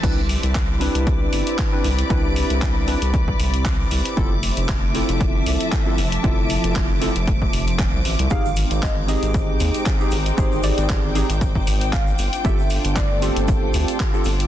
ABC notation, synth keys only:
X:1
M:4/4
L:1/16
Q:"Swing 16ths" 1/4=116
K:C
V:1 name="Synth keys"
[CDEB] z4 z [CDEB]6- [CDEB] [CDEB] z2 | [CDEB]6 [CDEB] z8 z | [CEFA] z4 z [CEFA]6- [CEFA] [CEFA] z2 | [CEFA]6 [CEFA] z8 z |
[C_EG_A] z4 z [CEGA]6- [CEGA] [CEGA] z2 | [C_EG_A]6 [CEGA] z8 z | [CFGA] z4 z [CFGA]6- [CFGA] [CFGA] z2 |]